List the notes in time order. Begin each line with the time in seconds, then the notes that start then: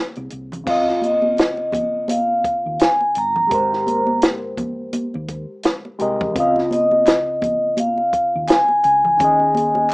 Already playing: A#3 G#4 C5 C#5
0.15 C2, closed hi-hat, muted conga
0.30 C2, closed hi-hat
0.52 closed hi-hat, low conga
0.64 C#2 C#3 C4 F5, kick, crash
0.68 F4 D#5
0.89 snare
1.02 D#5, closed hi-hat, high conga
1.22 high conga
1.37 snare, closed hi-hat, muted conga
1.57 muted conga
1.72 kick, closed hi-hat, high conga, low conga
2.08 F5, closed hi-hat, muted conga, high conga
2.44 muted fingered electric bass stroke, kick, closed hi-hat
2.66 D#2
2.79 G#5, snare, closed hi-hat
3.01 muted conga
3.15 G1 A#5, closed hi-hat
3.36 low conga
3.47 G#3 G4, kick, closed hi-hat, muted conga
3.52 G#1 A#4 C5
3.73 snare
3.87 closed hi-hat, high conga
4.07 high conga
4.22 snare, closed hi-hat
4.57 kick, closed hi-hat, high conga, low conga
4.93 muted fingered electric bass stroke, closed hi-hat, muted conga, high conga
5.14 D#2, muted conga
5.28 kick, closed hi-hat
5.63 snare, closed hi-hat, muted conga
5.85 muted conga
5.99 C2 G#3 G4 A#4 D#5, closed hi-hat
6.21 kick, low conga
6.33 C#2 C#3 C4, kick, closed hi-hat
6.38 F4 D#5 F5
6.56 snare, muted conga
6.71 D#5, closed hi-hat, high conga
6.91 high conga
7.06 snare, clap, closed hi-hat, muted conga
7.42 kick, closed hi-hat, high conga, low conga
7.77 F5, closed hi-hat, muted conga, high conga
7.98 muted conga
8.13 muted fingered electric bass stroke, kick, closed hi-hat
8.35 D#2
8.48 G#5, snare, clap, closed hi-hat, muted conga
8.68 muted conga
8.84 C#2 G#5, closed hi-hat
9.05 low conga
9.17 D#2 D#3 C#4, kick, closed hi-hat, low conga
9.22 G#4 D#5
9.40 muted conga
9.55 closed hi-hat, high conga
9.75 high conga
9.90 clap